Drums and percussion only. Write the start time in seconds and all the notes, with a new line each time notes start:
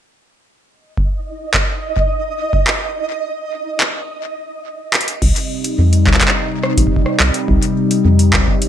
0.97 kick
1.54 kick, clap
1.97 kick
2.53 kick
2.67 clap
3.80 clap
4.94 clap, closed hi-hat
5.01 closed hi-hat
5.08 closed hi-hat
5.22 kick, crash
5.36 closed hi-hat
5.64 closed hi-hat
5.93 closed hi-hat
6.07 kick, clap
6.14 clap
6.21 kick, clap, closed hi-hat
6.28 cross-stick, clap
6.63 cross-stick
6.78 kick, closed hi-hat
6.87 kick
6.96 kick
7.06 cross-stick
7.20 clap
7.34 closed hi-hat
7.48 kick
7.62 closed hi-hat
7.91 closed hi-hat
8.19 closed hi-hat
8.33 kick, clap
8.47 kick
8.62 closed hi-hat